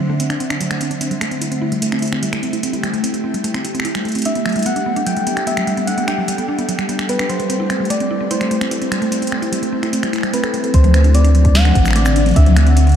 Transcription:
Already playing: D3 D4 C5 E5 F#5
0.10 A3
0.20 C4, closed hi-hat
0.30 D4, finger snap, closed hi-hat
0.40 C4, closed hi-hat
0.50 D4, finger snap, closed hi-hat
0.60 F#3, closed hi-hat
0.70 A3, finger snap, closed hi-hat
0.81 C4, closed hi-hat
0.91 D4, closed hi-hat
1.01 A3 C4, closed hi-hat
1.11 G3, closed hi-hat
1.21 A3 G4, finger snap, closed hi-hat
1.29 C4 E4, closed hi-hat
1.41 E4, closed hi-hat
1.52 C4, closed hi-hat
1.62 E4
1.72 G3, closed hi-hat
1.82 A3, closed hi-hat
1.92 C4, finger snap, closed hi-hat
1.97 G5, closed hi-hat
2.02 E4, closed hi-hat
2.06 closed hi-hat
2.07 closed hi-hat
2.12 C4, finger snap
2.23 G3, closed hi-hat
2.33 A3, finger snap, closed hi-hat
2.43 C4, closed hi-hat
2.53 E4, closed hi-hat
2.63 C4, closed hi-hat
2.73 E4, closed hi-hat
2.83 G3, finger snap, closed hi-hat
2.93 A3, closed hi-hat
3.04 C4, closed hi-hat
3.14 E4, closed hi-hat
3.24 C4
3.34 G3, closed hi-hat
3.44 A3, closed hi-hat
3.54 C4, finger snap, closed hi-hat
3.64 E4, closed hi-hat
3.74 C4, closed hi-hat
3.80 finger snap
3.85 E4, closed hi-hat
3.95 G3, finger snap, closed hi-hat
4.05 A3, closed hi-hat
4.08 closed hi-hat
4.12 closed hi-hat
4.15 C4, closed hi-hat
4.19 closed hi-hat
4.22 closed hi-hat
4.25 G3 D4 E5, closed hi-hat
4.35 B3, closed hi-hat
4.46 F#3 A4, finger snap, closed hi-hat
4.49 D4, closed hi-hat
4.52 closed hi-hat
4.56 G3, closed hi-hat
4.59 closed hi-hat
4.62 B3, closed hi-hat
4.66 F#5, closed hi-hat
4.76 D4, closed hi-hat
4.86 B3
4.96 D4, closed hi-hat
5.06 F#3 G5, closed hi-hat
5.17 G3, closed hi-hat
5.27 B3, closed hi-hat
5.37 D4, finger snap, closed hi-hat
5.47 B3 E5, closed hi-hat
5.57 F#3, finger snap, closed hi-hat
5.62 G5
5.67 G3, closed hi-hat
5.77 B3, closed hi-hat
5.87 D4 F#5, closed hi-hat
5.98 B3, closed hi-hat
6.08 D4 G5, finger snap, closed hi-hat
6.18 F#3
6.28 G3, closed hi-hat
6.38 B3, closed hi-hat
6.48 D4
6.59 B3, closed hi-hat
6.69 F#3, closed hi-hat
6.79 G3, finger snap, closed hi-hat
6.89 B3, closed hi-hat
6.99 D4, finger snap, closed hi-hat
7.09 B3 B4, closed hi-hat
7.19 D4, finger snap, closed hi-hat
7.29 F#3 C5, closed hi-hat
7.40 G3, closed hi-hat
7.50 A3 C4, closed hi-hat
7.60 E4
7.70 C4, finger snap, closed hi-hat
7.77 G3 E4
7.85 closed hi-hat
7.90 A3 C4 D5, closed hi-hat
8.00 C4, closed hi-hat
8.11 E4
8.21 C4
8.31 E4 C5, closed hi-hat
8.41 G3, finger snap, closed hi-hat
8.49 A3 G5, closed hi-hat
8.61 C4, finger snap, closed hi-hat
8.71 E4, closed hi-hat
8.82 C4, closed hi-hat
8.92 G3, finger snap, closed hi-hat
9.02 A3, closed hi-hat
9.12 C4, closed hi-hat
9.22 E4, closed hi-hat
9.27 closed hi-hat
9.32 C4, finger snap
9.42 E4, closed hi-hat
9.52 G3, closed hi-hat
9.62 A3, closed hi-hat
9.73 C4
9.83 E4, finger snap, closed hi-hat
9.93 C4, closed hi-hat
10.03 G3, finger snap, closed hi-hat
10.13 E4, finger snap, closed hi-hat
10.16 finger snap
10.18 finger snap
10.21 G3, finger snap
10.23 finger snap, closed hi-hat
10.29 finger snap
10.31 C4 B4, finger snap, closed hi-hat
10.43 A4, finger snap, closed hi-hat
10.54 A3, closed hi-hat
10.64 A4, closed hi-hat
10.74 D2 D3 F#3 C5, kick, closed hi-hat
10.84 A3, closed hi-hat, low conga
10.90 D4
10.94 C4, finger snap, closed hi-hat
11.04 D4, closed hi-hat
11.14 C4 D5, closed hi-hat
11.24 D4, closed hi-hat
11.35 F#3 F#5, closed hi-hat
11.45 A3, kick, closed hi-hat
11.55 C4 E5 F#5, snare, closed hi-hat
11.65 D4, finger snap, closed hi-hat, low conga
11.75 A1 C4, kick, closed hi-hat
11.85 F#3, finger snap, closed hi-hat, shaker
11.88 finger snap
11.91 finger snap
11.93 A3 D5, finger snap, closed hi-hat
12.06 C4, finger snap, closed hi-hat, shaker
12.16 D4, closed hi-hat
12.26 C4, closed hi-hat, low conga
12.29 closed hi-hat
12.31 closed hi-hat
12.34 D2 D4, kick, closed hi-hat
12.36 E5, closed hi-hat
12.46 F#3, closed hi-hat, low conga
12.56 A3 F#5, finger snap, closed hi-hat
12.66 C4, closed hi-hat
12.77 D4, closed hi-hat
12.87 C4, closed hi-hat
12.89 closed hi-hat
12.92 closed hi-hat

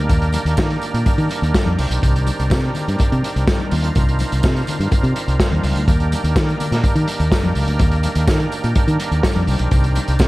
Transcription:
Already playing: D#3 A#3 D4 G4 A#4
0.09 D#2, kick, closed hi-hat, tambourine, muted conga
0.22 closed hi-hat
0.33 closed hi-hat, tambourine, muted conga
0.45 D#2, closed hi-hat
0.57 D#3, kick, snare, tambourine, high conga
0.70 closed hi-hat
0.82 closed hi-hat, tambourine
0.94 A#2, closed hi-hat
1.06 kick, closed hi-hat, muted conga
1.18 D#3, closed hi-hat
1.29 closed hi-hat, tambourine, muted conga
1.42 D#2, closed hi-hat
1.54 kick, snare, tambourine, high conga
1.65 F2, closed hi-hat, high conga
1.78 C2 C4, open hi-hat, tambourine
1.90 B1, closed hi-hat
2.02 C2, kick, closed hi-hat, tambourine, muted conga
2.16 closed hi-hat
2.27 closed hi-hat, tambourine, muted conga
2.39 C2, closed hi-hat
2.50 C3, kick, snare, tambourine, high conga
2.64 closed hi-hat
2.74 closed hi-hat, tambourine, low conga
2.88 G2, closed hi-hat
2.98 muted fingered electric bass stroke, kick, closed hi-hat, tambourine, muted conga
3.12 C3, closed hi-hat
3.22 closed hi-hat, muted conga
3.36 C2, closed hi-hat
3.47 kick, snare, tambourine, high conga
3.59 closed hi-hat, high conga
3.71 D#2 F4, open hi-hat, tambourine
3.84 closed hi-hat
3.95 C2, kick, closed hi-hat, tambourine, muted conga
4.08 closed hi-hat
4.19 closed hi-hat, tambourine, muted conga
4.32 C2, closed hi-hat
4.43 C3, kick, snare, tambourine, high conga
4.56 closed hi-hat
4.67 closed hi-hat, tambourine, low conga
4.79 G2, closed hi-hat
4.91 muted fingered electric bass stroke, kick, closed hi-hat, tambourine, muted conga
5.03 C3, closed hi-hat
5.15 closed hi-hat, tambourine, muted conga
5.28 C2, closed hi-hat
5.40 kick, snare, tambourine, high conga
5.51 D#2, closed hi-hat, high conga
5.62 C#2, open hi-hat, tambourine, high conga
5.76 D2, closed hi-hat
5.88 D#2 D#3 A#3 G4, kick, closed hi-hat, tambourine, muted conga
6.00 closed hi-hat
6.12 closed hi-hat, tambourine, muted conga
6.24 D#2, closed hi-hat
6.36 D#3, kick, snare, tambourine, high conga
6.49 closed hi-hat
6.60 closed hi-hat, tambourine, low conga
6.71 A#2, snare, closed hi-hat
6.83 kick, closed hi-hat, tambourine, muted conga
6.95 D#3, closed hi-hat
7.07 closed hi-hat, tambourine, muted conga
7.20 D#2, closed hi-hat
7.32 kick, snare, tambourine, high conga
7.43 F2, closed hi-hat, high conga
7.55 C#2, open hi-hat, tambourine
7.67 D2, closed hi-hat
7.79 D#2, kick, closed hi-hat, tambourine, muted conga
7.91 closed hi-hat
8.03 closed hi-hat, tambourine, muted conga
8.15 D#2, closed hi-hat
8.27 D#3, kick, snare, tambourine, high conga
8.40 closed hi-hat
8.52 closed hi-hat, tambourine
8.64 A#2, closed hi-hat
8.75 kick, closed hi-hat, tambourine, muted conga
8.87 D#3, closed hi-hat
8.99 closed hi-hat, tambourine, muted conga
9.11 D#2, closed hi-hat
9.23 kick, snare, tambourine, high conga
9.36 F2, closed hi-hat, high conga
9.47 C2 C4, open hi-hat, tambourine
9.59 B1, closed hi-hat
9.71 C2, kick, closed hi-hat, tambourine, muted conga
9.84 closed hi-hat
9.95 closed hi-hat, tambourine, muted conga
10.08 C2, closed hi-hat
10.19 C3, kick, snare, tambourine, high conga

